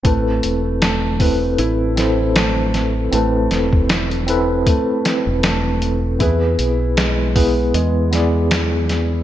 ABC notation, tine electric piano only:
X:1
M:4/4
L:1/8
Q:"Swing 16ths" 1/4=78
K:Am
V:1 name="Tine electric piano"
[CEAB]3 [CEAB]2 [CEAc]3 | [CEAB]3 [CEAB]4- [CEAB] | [B,E^GB]3 [B,EGB]2 [B,EGd]3 |]